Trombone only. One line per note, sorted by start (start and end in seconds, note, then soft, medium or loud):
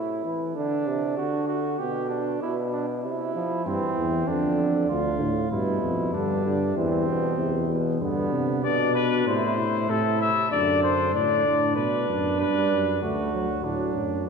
0.00 0.26 A2 medium
0.24 0.56 E3 medium
0.56 0.88 D3 medium
0.87 1.18 C3 medium
1.18 1.79 D3 medium
1.80 2.40 B2 medium
2.41 3.06 B2 medium
3.04 3.34 C3 medium
3.35 3.67 F3 medium
3.66 4.28 E3 medium
4.29 4.89 D3 medium
4.91 5.30 D3 medium
5.52 6.16 B2 medium
6.14 6.45 D3 medium
6.45 6.59 D3 medium
6.76 7.07 E3 medium
7.07 7.40 B2 medium
7.39 7.70 C3 medium
7.71 8.03 B2 medium
8.01 8.66 D3 medium
8.64 9.27 B2 medium
9.27 9.88 C3 medium
9.90 10.51 C3 medium
10.52 11.13 D3 medium
11.14 12.09 D3 medium
12.39 12.98 G3 medium
13.03 13.32 A3 medium
13.34 13.48 F#3 medium
13.66 14.27 F#3 medium